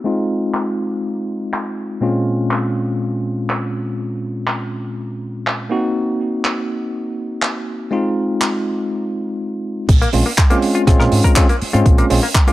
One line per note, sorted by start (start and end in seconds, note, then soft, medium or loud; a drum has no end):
0.04 1.99 G#3 medium
0.04 1.99 C4 medium
0.04 1.99 D#4 medium
0.04 2.00 F4 medium
0.54 clap medium
1.53 clap loud
2.01 5.67 A#2 medium
2.01 5.68 G#3 medium
2.01 5.68 C4 medium
2.01 5.68 C#4 medium
2.01 5.68 F4 medium
2.51 clap medium
3.50 clap medium
4.47 clap loud
5.47 clap medium
5.69 7.89 A#3 medium
5.69 7.89 C4 medium
5.69 7.89 D#4 medium
5.69 7.90 F#4 medium
6.45 clap medium
7.42 clap loud
7.91 9.85 G#3 medium
7.91 9.86 C4 medium
7.91 9.86 D#4 medium
7.91 9.86 F4 medium
8.41 clap loud
9.89 10.04 A#1 loud
9.89 kick loud
9.89 closed hi-hat medium
9.89 crash loud
10.02 10.08 A#3 medium
10.02 closed hi-hat medium
10.13 10.21 A#1 loud
10.13 10.23 G#3 medium
10.13 10.23 C4 medium
10.13 10.23 C#4 medium
10.13 10.23 F4 medium
10.13 open hi-hat loud
10.26 10.30 A#3 medium
10.38 kick loud
10.38 clap loud
10.38 closed hi-hat medium
10.50 10.84 G#3 medium
10.50 10.57 A#3 medium
10.50 10.84 C4 medium
10.50 10.85 C#4 medium
10.50 10.85 F4 medium
10.50 closed hi-hat medium
10.62 open hi-hat medium
10.75 10.81 F4 medium
10.75 closed hi-hat medium
10.87 10.95 A#1 medium
10.87 11.33 G#3 medium
10.87 11.34 C4 medium
10.87 11.34 C#4 medium
10.87 11.34 F4 loud
10.87 kick loud
10.87 cross-stick medium
10.87 closed hi-hat loud
11.00 11.08 A#2 medium
11.00 11.03 A#4 medium
11.00 cross-stick medium
11.12 11.20 G#2 loud
11.12 open hi-hat loud
11.24 11.30 A#4 medium
11.24 kick medium
11.24 closed hi-hat medium
11.36 11.46 G#3 medium
11.36 11.46 C4 medium
11.36 11.46 C#4 medium
11.36 11.46 F4 loud
11.36 kick loud
11.36 clap loud
11.36 closed hi-hat medium
11.49 11.55 A#3 medium
11.49 closed hi-hat medium
11.62 muted fingered electric bass stroke soft
11.62 open hi-hat medium
11.73 11.82 G#2 loud
11.73 12.07 G#3 medium
11.73 12.07 C4 medium
11.73 12.08 C#4 medium
11.73 11.80 F4 medium
11.73 12.08 F4 medium
11.73 closed hi-hat medium
11.86 12.01 A#1 loud
11.86 kick loud
11.86 closed hi-hat medium
11.98 12.04 A#3 medium
11.98 closed hi-hat medium
12.10 12.19 A#1 loud
12.10 12.19 G#3 medium
12.10 12.20 C4 medium
12.10 12.20 C#4 medium
12.10 12.20 F4 medium
12.10 open hi-hat loud
12.23 12.27 A#3 medium
12.35 kick loud
12.35 clap loud
12.35 closed hi-hat medium
12.47 12.53 G#3 medium
12.47 12.53 A#3 medium
12.47 12.53 C4 medium
12.47 12.53 C#4 medium
12.47 12.53 F4 medium
12.47 closed hi-hat medium